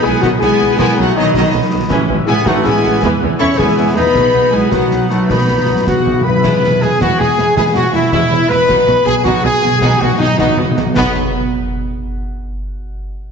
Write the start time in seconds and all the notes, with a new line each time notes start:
Already playing: B2 F#3 B3 F#4 B5
0.02 B1 D#3 F#3 G#3 B3 E4 G#4 B4 G#5
0.20 B1 D#3 F#3 B3 D#4 F#4 D#5 F#5, concert bass drum, snare
0.33 B5
0.39 B1 D#3 G#3 B3 E4 G#4 D#5 G#5, snare
0.43 G#5
0.51 B4
0.58 B1 D#3 F#3 D#4, snare
0.70 B3
0.76 B1 B2 D#3 G#3 B3 E4 G#4 G#5, concert bass drum, snare
0.87 F#3
0.97 B1 D#3 F#3 A3 B3 D#4 F#4 F#5
1.01 F#5
1.07 D#4
1.15 B1 D#3 F#3 B3 D#4 B4 D#5
1.26 D#4
1.34 B1 D#3 F#3 B3 D#4 D#5, concert bass drum, snare
1.45 B5
1.53 B1 D#3 B3 D#5
1.64 B4
1.72 B1 D#3 F#3 D#4
1.80 B3
1.90 A1 A2 E3 C#4, concert bass drum, snare, crash
2.00 E3
2.09 A1 E3 C#4
2.17 E4
2.26 A1 C#3 G#3 A3 B3 E4 G#4 E5 G#5
2.36 C#5
2.46 A1 E3 F#3 A3 C#4 D#4 F#4 E5 F#5, concert bass drum, snare
2.55 E6
2.63 A1 E3 G#3 B3 C#4 E4 G#4 E5 G#5, snare
2.74 C#5
2.84 A1 C#3 A3 E4, snare
2.92 C#4
3.01 E2 E3 B3, concert bass drum, snare
3.10 B2
3.20 E2 E3 B3
3.30 E4
3.38 E2 E3 G#3 C#4 E4 A4 C#5 E5 C#6
3.48 B4
3.57 E2 E3 G#3 B3 E4 G#4 E5 G#5, concert bass drum, snare
3.68 E6
3.77 E2 E3 B3 E5
3.86 B4
3.94 E2 E3 G#3 B3 D#4 E4 G#4 B4 B5
4.05 B3
4.14 B1 B2 D#3 B3, concert bass drum, snare, crash
4.23 F#3
4.32 B1 D#3 B3
4.42 F#4
4.50 B1 D#3 F#3 G#3 B3 E4 G#4 D#5 G#5
4.61 B4
4.70 B1 D#3 F#3 B3 D#4 F#4 F#5, concert bass drum, snare
4.82 D#6
4.91 B1 D#3 B3 F#5, snare
5.01 B4
5.08 B1 D#3 F#3 A3 D#4 F#4 F#5, snare
5.21 B3
5.27 B1 B2 D#3 B3 D#4 F#4 B4 B5, concert bass drum, snare
5.37 B2 F#3
5.44 B2
5.48 B1 B2 D#3 B3
5.59 B2 F#4
5.66 B1 B2 D#3 F#3 D#5
5.74 B2 B4
5.82 B2 F#4
5.87 B1 B2 F#3 F#4 F#5, concert bass drum, snare
5.97 B2 D#6
6.05 B1 B2 E3 F#5
6.13 B2 B4
6.21 B2 B4
6.25 B1 B2 E3 F#3 F#4 B4 B5
6.30 B3
6.35 B2 G#4
6.39 E5
6.44 E1 E2 G#3 B3 E4, concert bass drum, snare, crash
6.61 E1 E2 G#3 B3 E4, snare
6.80 E1 E2 G#3 B3 E4 G#4 G#5, snare
6.99 E1 E2 G#3 B3 E4 F#4 F#5, concert bass drum, snare
7.19 E1 E2 G#3 B3 E4 G#4 G#5
7.38 E1 E2 G#3 B3 E4, snare
7.55 E1 E2 G#3 B3 E4 G#4 G#5, concert bass drum, snare
7.73 E1 E2 G#3 B3 E4 F#4 F#5
7.91 E1 E2 G#3 B3 E4 E5
7.95 E5
8.11 E1 E2 G#3 B3 E4 E5, concert bass drum, snare
8.30 E1 E2 G#3 B3 E4
8.49 E1 E2 B2 G#3 B3 E4 B4 B5, snare
8.55 B3
8.60 F#4
8.65 B1 B2 B3 D#5, concert bass drum, snare, crash
8.69 B2 F#3 D#4 F#4
8.77 B2
8.84 B1 B2, snare
8.88 B2 F#3 B3 D#4 F#4
8.99 B2
9.05 B1 B2 F#3 B3 D#4 F#4 G#4 G#5, snare
9.14 B2
9.22 B1 B2 D#4 F#4 F#5, concert bass drum, snare
9.26 B2 F#3 B3 F#4
9.36 B2
9.42 B1 B2 F#3 B3 D#4 F#4 G#4 G#5
9.59 B1 B2 D#4 F#4, snare
9.63 B2 F#3 B3
9.74 B2 G#4
9.81 B1 B2 F#3 B3 D#4 F#4 G#4 G#5, concert bass drum, snare
9.89 B2
9.97 B2 F#4
10.01 B1 B2 F#3 B3 D#4 F#4 F#5
10.12 B2
10.18 B1 B2 F#3 B3 D#4 F#4 D#5
10.26 B2
10.34 B2 D#4 D#5
10.38 B1 B2 F#3 B3 D#4 F#4 D#5, concert bass drum, snare
10.49 B2
10.56 B1 B2 F#3 B3 D#4 F#4
10.63 B2
10.71 B2
10.76 B1 B2 F#3 B3 D#4 F#4, snare
10.86 B2
10.91 B2 B3
10.95 B1 B2 F#3 B3 D#4 F#4 B4 D#5, concert bass drum, snare, crash
11.02 F#5